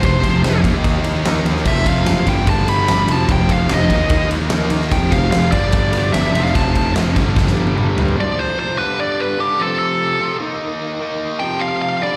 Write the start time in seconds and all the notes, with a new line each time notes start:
Already playing: F2 C3 F3 C4 G4
0.03 F1 C5, kick, ride
0.23 F1, kick, ride
0.43 F1 F2 C3 F3, snare, ride
0.63 D#2 D#3 A#3 D#4 A#4 F5, kick, ride
0.84 D#2, kick, ride
1.04 D#2, ride
1.23 D#2 D#3 A#3 D#4, snare, ride
1.45 D#2, ride
1.56 snare
1.65 F1 F2 C3 F3 C4 G4 E5, kick, crash
1.86 F1 F5, kick, ride
2.06 F#1, snare, ride
2.26 G1 G2 D3 G3 D4 A4 G5, kick, ride
2.47 G1 A5, kick, ride
2.68 G1 B5, ride
2.87 G1 G2 D3 G3, snare, ride
3.07 F1 F2 C3 F3 C4 G4, ride
3.12 A5
3.28 F1 G5, kick, ride
3.48 F1 F5, kick, ride
3.69 F1 F2 C3 F3, snare, ride
3.74 D#5
3.88 D#2 D#3 A#3 D#4 A#4 F5, kick, ride
4.09 D#2, kick, ride
4.30 D#2, ride
4.50 D#2 D#3 A#3 D#4, snare, ride
4.70 D#3, ride
4.81 snare
4.91 F1 F2 C3 F3 C4 G4 G5, kick, ride
5.11 F1 F5, kick, ride
5.31 F1 F5, snare, ride
5.52 G1 G2 D3 G3 D4 A4 D5, kick, ride
5.72 G1, kick, ride
5.93 G1, ride
6.12 G1 G2 D3 E5, snare, ride
6.17 G3
6.32 F1 F2 C3 F3 C4 G4, ride
6.37 F3
6.43 F5, snare
6.55 F1 A5, kick, ride
6.75 F1, kick, ride
6.94 F1 F2 C3 F3, snare, ride
7.15 G1 G2 D3 G3 D4 A4, kick, ride
7.36 G1, kick, snare
7.47 snare
7.56 G1
7.67 high tom
7.75 G1 G2 D3 G3, mid tom
7.96 G2, floor tom
8.08 floor tom
8.16 F2 C3 F3 C4 G4 D5
8.39 C5
8.59 C5
8.78 G2 D3 G3 D4 A4 B4
9.00 D5
9.20 B4
9.39 G2 D3 G3 G4
9.58 F2 C3 F3 C4 G4 A4
9.79 A4
10.20 F2 C3 F3
10.39 D#3 A#3 D#4 A#4 F5
11.00 D#3 A#3 D#4
11.39 F2 C3 F3 C4 G4 G5
11.60 F5
11.81 F5
12.01 G2 D3 G3 D4 A4 D5